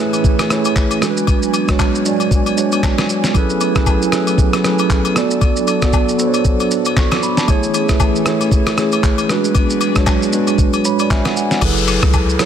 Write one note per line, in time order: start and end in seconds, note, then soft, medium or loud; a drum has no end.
0.00 1.00 E3 medium
0.00 0.49 A3 loud
0.00 1.00 A3 medium
0.00 1.00 C#4 medium
0.00 0.50 E4 loud
0.00 0.51 G#4 loud
0.00 1.03 B4 loud
0.00 0.52 C#5 loud
0.00 5.12 G#5 loud
0.13 high agogo medium
0.13 shaker soft
0.24 kick loud
0.24 shaker medium
0.39 cross-stick medium
0.39 high agogo medium
0.39 shaker soft
0.49 1.02 A3 medium
0.49 1.02 E4 medium
0.49 1.02 G#4 medium
0.49 1.03 C#5 medium
0.49 cross-stick loud
0.49 shaker medium
0.65 high agogo medium
0.65 shaker medium
0.76 kick medium
0.76 clap medium
0.76 shaker medium
0.91 high agogo medium
0.91 shaker medium
1.01 3.32 F#3 medium
1.01 1.53 G#3 medium
1.01 7.44 B3 medium
1.01 1.54 D4 medium
1.01 3.32 D4 medium
1.01 1.54 F#4 medium
1.01 1.10 A4 medium
1.01 cross-stick medium
1.01 shaker medium
1.10 1.58 B4 loud
1.17 shaker medium
1.27 kick loud
1.27 high agogo medium
1.27 shaker medium
1.43 shaker medium
1.54 high agogo medium
1.54 shaker medium
1.68 1.98 G#3 medium
1.68 1.99 D4 medium
1.68 1.99 F#4 medium
1.68 2.00 C#5 medium
1.68 kick medium
1.68 cross-stick loud
1.68 shaker medium
1.79 kick medium
1.79 clap loud
1.79 high agogo medium
1.79 low woodblock medium
1.79 shaker medium
1.95 shaker medium
2.04 2.48 G#3 medium
2.04 2.48 D4 medium
2.04 2.49 F#4 medium
2.04 2.49 D5 medium
2.04 shaker loud
2.20 high agogo medium
2.20 shaker soft
2.31 kick loud
2.31 shaker medium
2.46 high agogo medium
2.46 shaker soft
2.56 3.20 G#3 medium
2.56 3.21 D4 medium
2.56 3.21 F#4 medium
2.56 3.22 C#5 loud
2.56 shaker medium
2.72 high agogo medium
2.72 shaker medium
2.83 kick medium
2.83 snare medium
2.83 clap medium
2.83 low woodblock medium
2.83 shaker medium
2.98 cross-stick loud
2.98 snare medium
2.98 high agogo medium
2.98 shaker soft
3.09 shaker medium
3.24 snare medium
3.24 shaker medium
3.34 3.66 F#3 loud
3.34 5.14 F#3 medium
3.34 5.14 A3 medium
3.34 3.66 C#4 loud
3.34 5.14 E4 medium
3.34 3.67 E4 loud
3.34 3.67 G#4 loud
3.34 3.67 A4 loud
3.34 3.68 B4 loud
3.34 kick loud
3.34 high agogo medium
3.34 shaker medium
3.50 shaker medium
3.61 high agogo medium
3.61 shaker medium
3.75 4.05 F#3 medium
3.75 4.06 C#4 medium
3.75 4.06 E4 medium
3.75 4.06 G#4 medium
3.75 4.06 A4 medium
3.75 4.07 B4 medium
3.75 kick medium
3.75 cross-stick loud
3.75 shaker medium
3.86 kick medium
3.86 high agogo medium
3.86 low woodblock medium
3.86 shaker medium
4.02 shaker medium
4.12 4.55 F#3 medium
4.12 4.55 C#4 medium
4.12 4.55 E4 medium
4.12 4.56 G#4 medium
4.12 4.56 A4 medium
4.12 4.56 B4 medium
4.12 cross-stick loud
4.12 shaker loud
4.27 high agogo medium
4.27 shaker medium
4.38 kick loud
4.38 shaker medium
4.53 cross-stick medium
4.53 high agogo medium
4.53 shaker soft
4.63 5.15 F#3 medium
4.63 5.16 C#4 medium
4.63 5.16 E4 medium
4.63 5.16 G#4 medium
4.63 5.16 A4 medium
4.63 5.17 B4 medium
4.63 cross-stick medium
4.63 shaker medium
4.79 high agogo medium
4.79 shaker medium
4.90 kick medium
4.90 clap medium
4.90 shaker medium
5.05 high agogo medium
5.05 shaker medium
5.15 7.46 F#3 medium
5.15 5.67 B3 medium
5.15 7.46 D4 medium
5.15 5.67 F#4 medium
5.15 7.46 A4 medium
5.15 5.68 A4 medium
5.15 5.68 D5 loud
5.15 cross-stick medium
5.15 shaker medium
5.31 shaker medium
5.41 kick loud
5.41 high agogo medium
5.41 shaker medium
5.56 shaker medium
5.67 high agogo medium
5.67 shaker medium
5.82 6.12 B3 medium
5.82 6.13 F#4 medium
5.82 6.13 A4 medium
5.82 6.14 D5 medium
5.82 kick medium
5.82 cross-stick loud
5.82 shaker medium
5.93 kick medium
5.93 high agogo medium
5.93 low woodblock medium
5.93 shaker medium
6.08 shaker medium
6.18 6.62 B3 medium
6.18 6.62 F#4 medium
6.18 6.63 A4 medium
6.18 6.27 C5 medium
6.18 shaker loud
6.27 6.66 C#5 medium
6.34 high agogo medium
6.34 shaker medium
6.45 kick loud
6.45 shaker medium
6.60 high agogo medium
6.60 shaker soft
6.71 shaker medium
6.85 high agogo medium
6.85 shaker medium
6.97 7.11 C#6 medium
6.97 kick loud
6.97 snare medium
6.97 clap medium
6.97 shaker medium
7.12 7.22 D6 medium
7.12 cross-stick loud
7.12 snare medium
7.12 high agogo medium
7.12 shaker medium
7.23 7.37 B5 medium
7.23 shaker medium
7.37 7.62 A5 medium
7.37 snare medium
7.37 shaker medium
7.47 9.28 E3 medium
7.47 7.80 A3 loud
7.47 9.28 A3 medium
7.47 9.28 C#4 medium
7.47 7.80 E4 loud
7.47 9.28 G#4 medium
7.47 7.81 G#4 loud
7.47 7.81 C#5 loud
7.47 kick loud
7.47 high agogo medium
7.47 shaker medium
7.63 shaker medium
7.74 high agogo medium
7.74 shaker medium
7.88 8.19 A3 medium
7.88 8.19 E4 medium
7.88 8.20 G#4 medium
7.88 8.20 B4 medium
7.88 kick medium
7.88 cross-stick loud
7.88 shaker medium
8.00 kick loud
8.00 high agogo medium
8.00 low woodblock medium
8.00 shaker medium
8.15 shaker medium
8.25 8.69 A3 medium
8.25 8.69 E4 medium
8.25 8.69 G#4 medium
8.25 8.70 C#5 medium
8.25 cross-stick loud
8.25 shaker loud
8.41 high agogo medium
8.41 shaker soft
8.52 kick loud
8.52 shaker medium
8.66 cross-stick medium
8.66 high agogo medium
8.66 shaker soft
8.77 9.29 A3 medium
8.77 9.29 E4 medium
8.77 9.30 G#4 medium
8.77 9.30 C#5 medium
8.77 cross-stick loud
8.77 shaker medium
8.92 high agogo medium
8.92 shaker medium
9.03 kick loud
9.03 clap medium
9.03 shaker medium
9.18 high agogo medium
9.18 shaker medium
9.28 11.60 F#3 medium
9.28 9.81 G#3 medium
9.28 11.60 B3 medium
9.28 11.60 D4 medium
9.28 9.81 D4 medium
9.28 9.82 F#4 medium
9.28 11.60 G#4 medium
9.28 9.82 B4 loud
9.28 cross-stick medium
9.28 shaker medium
9.44 shaker medium
9.55 kick loud
9.55 high agogo medium
9.55 shaker medium
9.70 shaker medium
9.81 high agogo medium
9.81 shaker medium
9.95 10.26 G#3 medium
9.95 10.26 D4 medium
9.95 10.27 F#4 medium
9.95 10.27 C#5 medium
9.95 kick medium
9.95 cross-stick loud
9.95 shaker medium
10.06 kick medium
10.06 clap loud
10.06 high agogo medium
10.06 low woodblock medium
10.06 shaker medium
10.22 shaker medium
10.32 10.76 G#3 medium
10.32 10.76 D4 medium
10.32 10.77 F#4 medium
10.32 10.77 B4 medium
10.32 shaker loud
10.47 high agogo medium
10.47 shaker soft
10.58 kick loud
10.58 shaker medium
10.73 high agogo medium
10.73 shaker soft
10.85 10.99 C#5 medium
10.85 11.09 B5 medium
10.85 shaker medium
10.99 11.10 D5 medium
10.99 high agogo medium
10.99 shaker medium
11.10 11.25 E5 medium
11.10 11.35 G#5 medium
11.10 kick medium
11.10 snare medium
11.10 clap medium
11.10 shaker medium
11.25 11.36 F#5 medium
11.25 cross-stick loud
11.25 snare medium
11.25 high agogo medium
11.25 shaker medium
11.36 11.51 F#5 medium
11.36 11.51 G#5 medium
11.36 shaker medium
11.51 11.76 F#5 medium
11.51 snare medium
11.51 shaker medium
11.61 11.99 F#1 loud
11.61 12.26 F#3 loud
11.61 12.26 E4 loud
11.61 12.26 G#4 loud
11.61 12.27 A4 loud
11.61 12.27 B4 loud
11.61 kick loud
11.61 crash loud
11.61 downlifter medium
11.61 high agogo medium
11.61 shaker medium
11.77 shaker medium
11.88 open hi-hat medium
11.88 high agogo medium
11.88 shaker medium
12.02 12.36 C#2 medium
12.02 kick medium
12.02 cross-stick loud
12.02 shaker medium
12.13 kick loud
12.13 high agogo medium
12.13 low woodblock medium
12.13 shaker medium
12.29 shaker medium
12.39 12.45 F#3 medium
12.39 12.45 E4 medium
12.39 12.45 G#4 medium
12.39 12.45 A4 medium
12.39 12.45 C#5 loud
12.39 cross-stick loud
12.39 open hi-hat medium
12.39 shaker loud